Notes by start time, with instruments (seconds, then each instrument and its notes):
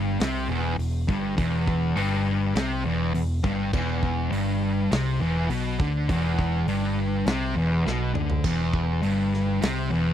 Already playing: picked electric bass G1, distorted electric guitar G2
0.19 picked electric bass C2, distorted electric guitar C3, snare, open hi-hat
0.48 picked electric bass E1, distorted electric guitar E2
0.78 picked electric bass E1, distorted electric guitar E2, open hi-hat
1.08 picked electric bass G1, distorted electric guitar G2, kick
1.37 picked electric bass E1, distorted electric guitar E2, kick, open hi-hat
1.67 kick
1.96 picked electric bass G1, distorted electric guitar G2, open hi-hat
2.55 picked electric bass C2, distorted electric guitar C3, snare, open hi-hat
2.85 picked electric bass E1, distorted electric guitar E2
3.14 picked electric bass E1, distorted electric guitar E2, open hi-hat
3.43 picked electric bass G1, distorted electric guitar G2, kick
3.73 picked electric bass E1, distorted electric guitar E2, kick, crash
4.03 kick
4.31 picked electric bass G1, distorted electric guitar G2, open hi-hat
4.91 picked electric bass C2, distorted electric guitar C3, snare, open hi-hat
5.19 picked electric bass E1, distorted electric guitar E2
5.49 picked electric bass B1, distorted electric guitar B2, open hi-hat
5.79 picked electric bass D2, distorted electric guitar D3, kick
6.09 picked electric bass E1, distorted electric guitar E2, kick, open hi-hat
6.39 kick
6.66 picked electric bass G1, distorted electric guitar G2, open hi-hat
7.26 picked electric bass C2, distorted electric guitar C3, snare, open hi-hat
7.55 picked electric bass E1, distorted electric guitar E2
7.85 picked electric bass B1, distorted electric guitar B2, snare
8.14 picked electric bass D2, distorted electric guitar D3, mid tom
8.30 floor tom
8.44 picked electric bass E1, distorted electric guitar E2, kick, crash
8.73 kick
9.03 picked electric bass G1, distorted electric guitar G2, open hi-hat
9.34 snare
9.61 picked electric bass C2, distorted electric guitar C3, snare, open hi-hat
9.90 picked electric bass E1, distorted electric guitar E2